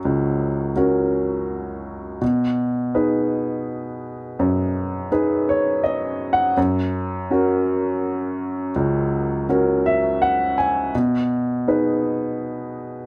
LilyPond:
\new Staff \with { instrumentName = "Upright piano" } { \time 3/4 \key b \major \tempo 4 = 83 << { r2. | r2. | r4. cis''8 \tuplet 3/2 { dis''4 fis''8 } | r2. |
r4. e''8 fis''8 gis''8 | r2. | } \\ { <cis, cis' fis' ais'>4 <cis' fis' ais'>2 | b,4 <dis' gis' b'>2 | fis,4 <dis' gis' b'>2 | fis,4 <cis' fis' ais'>2 |
cis,4 <cis' fis' ais'>2 | b,4 <dis' gis' b'>2 | } >> }